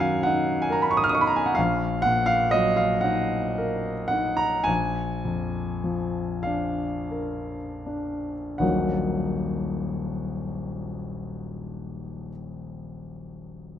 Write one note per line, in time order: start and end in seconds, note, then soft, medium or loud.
0.00 1.54 F#2 medium
0.00 1.60 D#3 soft
0.00 0.51 F#3 soft
0.00 1.55 F5 medium
0.00 0.23 F#5 medium
0.00 0.62 G#5 medium
0.00 0.72 A#5 loud
0.23 0.96 D#4 soft
0.23 0.64 F#5 medium
0.62 0.75 G#5 medium
0.70 1.39 A#4 soft
0.70 0.84 A#5 medium
0.82 0.92 B5 medium
0.91 0.99 C#6 medium
0.97 1.05 D#6 medium
1.04 1.11 F6 medium
1.09 1.58 D#4 soft
1.09 1.17 D#6 medium
1.15 1.23 C#6 medium
1.21 1.30 B5 medium
1.27 1.38 A#5 medium
1.36 1.47 G#5 medium
1.46 1.56 F#5 medium
1.55 4.65 A#1 medium
1.55 2.04 F5 medium
2.02 2.85 A#2 soft
2.02 2.28 F#5 loud
2.26 2.53 F5 medium
2.51 3.37 F#3 soft
2.51 2.78 D#5 medium
2.76 3.04 F5 medium
3.01 3.91 D#4 soft
3.01 4.06 F#5 medium
3.58 4.46 A#4 soft
4.08 4.67 D#4 soft
4.08 4.38 F#5 medium
4.37 4.66 A#5 medium
4.64 8.57 A#1 medium
4.64 6.43 G#5 medium
5.25 6.20 F2 soft
5.84 6.84 F3 soft
6.43 7.56 D4 soft
6.43 8.60 F5 medium
7.11 8.32 A#4 soft
7.86 8.61 D4 soft
8.58 12.29 D#1 soft
8.58 12.29 A#1 soft
8.58 12.30 F#3 soft
8.58 12.30 A#3 soft
8.58 12.30 D#4 soft
8.58 12.30 F#4 soft
8.58 12.28 F#5 medium